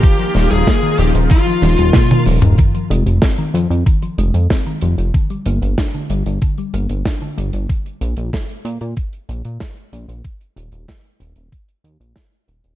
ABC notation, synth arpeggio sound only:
X:1
M:4/4
L:1/16
Q:1/4=94
K:Fdor
V:1 name="Synth arpeggio sound" clef=bass
E, F, G, z B, E, F, z E, F, G, z B, E, F, z | E, F, A, z C E, F, z E, F, A, z C E, F, z | D, G, B, z D D, G, z D, G, B, z D D, G, z | z16 |
z16 |]